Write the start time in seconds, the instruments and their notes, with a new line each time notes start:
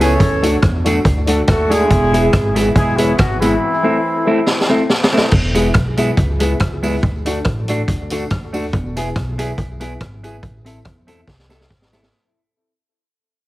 Already playing: upright bass C#2
0.00 upright piano B3 E4 G#4, clean electric guitar B3 E4 G#4, horn section C#4 A4 C#5, closed hi-hat, tambourine
0.20 upright bass D2, kick, closed hi-hat
0.42 clean electric guitar A3 D4 F#4, upright piano D4 F#4 A4, closed hi-hat, tambourine
0.62 upright bass E2, kick, cross-stick, closed hi-hat
0.84 clean electric guitar A3 D4 F#4, upright piano D4 F#4 A4, closed hi-hat, tambourine
1.05 upright bass D2, kick, closed hi-hat
1.26 clean electric guitar A3 D4 F#4, upright piano D4 F#4 A4, closed hi-hat, tambourine
1.47 upright bass D#2, horn section A3 F#4 A4, kick, cross-stick, closed hi-hat
1.69 horn section G#3 E4 G#4, clean electric guitar A3 D4 F#4, upright piano D4 F#4 A4, closed hi-hat, tambourine
1.90 upright bass E1, kick, closed hi-hat
2.13 clean electric guitar G#3 B3 E4, upright piano B3 E4 G#4, closed hi-hat, tambourine
2.33 upright bass G#1, kick, cross-stick, closed hi-hat
2.54 clean electric guitar G#3 B3 E4, upright piano B3 E4 G#4, closed hi-hat, tambourine
2.74 upright bass E1, horn section G#3 E4 G#4, kick, closed hi-hat
2.97 horn section E3 C#4 E4, clean electric guitar G#3 B3 E4, upright piano B3 E4 G#4, closed hi-hat, tambourine
3.17 upright bass G#1, horn section F#3 B3 F#4, kick, cross-stick, closed hi-hat
3.40 horn section E3 C4 E4, clean electric guitar G#3 B3 E4, upright piano B3 E4 G#4, closed hi-hat, tambourine
3.83 clean electric guitar A3 C4 E4, upright piano C4 E4 A4
4.25 clean electric guitar A3 C4 E4, upright piano C4 E4 A4
4.47 snare
4.61 snare
4.69 clean electric guitar A3 C4 E4, upright piano C4 E4 A4
4.89 snare
5.04 snare
5.12 clean electric guitar A3 C4 E4, upright piano C4 E4 A4
5.17 snare
5.31 upright bass E1, kick, crash
5.54 clean electric guitar G#3 B3 E4, upright piano B3 E4 G#4, closed hi-hat, tambourine
5.74 upright bass B1, kick, cross-stick, closed hi-hat
5.97 clean electric guitar G#3 B3 E4, upright piano B3 E4 G#4, closed hi-hat, tambourine
6.17 upright bass C#2, kick, closed hi-hat
6.40 clean electric guitar G#3 B3 E4, upright piano B3 E4 G#4, closed hi-hat, tambourine
6.59 upright bass C#2, kick, cross-stick, closed hi-hat
6.83 clean electric guitar G#3 B3 E4, upright piano B3 E4 G#4, open hi-hat, tambourine
7.03 upright bass D2, kick, closed hi-hat
7.26 clean electric guitar A3 D4 F#4, upright piano D4 F#4 A4, closed hi-hat, tambourine
7.45 upright bass A1, kick, cross-stick, closed hi-hat
7.68 clean electric guitar A3 D4 F#4, upright piano D4 F#4 A4, closed hi-hat, tambourine
7.88 upright bass D2, kick, closed hi-hat
8.10 clean electric guitar A3 D4 F#4, upright piano D4 F#4 A4, closed hi-hat, tambourine
8.30 upright bass D#2, kick, cross-stick, closed hi-hat
8.53 clean electric guitar A3 D4 F#4, upright piano D4 F#4 A4, open hi-hat, tambourine
8.73 upright bass E1, kick, closed hi-hat
8.96 upright piano B3 E4 G#4, clean electric guitar B3 E4 G#4, closed hi-hat, tambourine
9.16 upright bass B1, kick, cross-stick, closed hi-hat
9.38 clean electric guitar B3 E4 G#4, upright piano B3 E4 G#4, closed hi-hat, tambourine
9.58 upright bass B1, kick, closed hi-hat
9.80 upright piano B3 E4 G#4, clean electric guitar B3 E4 G#4, closed hi-hat, tambourine
10.00 upright bass G#1, kick, cross-stick, closed hi-hat
10.23 upright piano B3 E4 G#4, clean electric guitar B3 E4 G#4, closed hi-hat, tambourine
10.43 upright bass A1, kick, closed hi-hat
10.64 upright piano C4 E4 A4, clean electric guitar C4 E4 A4, closed hi-hat, tambourine
10.85 upright bass E2, upright piano E4, kick, cross-stick, closed hi-hat
11.07 upright piano C4 E4 A4, clean electric guitar C4 E4 A4, closed hi-hat, tambourine
11.28 upright bass C2, kick, snare
11.39 snare
11.49 clean electric guitar C4 E4 A4, upright piano C4 E4 A4, snare, tambourine
11.61 snare
11.70 upright bass G#1, kick, snare
11.82 snare
11.92 upright piano C4 E4 A4, clean electric guitar C4 E4 A4, snare, tambourine
12.03 snare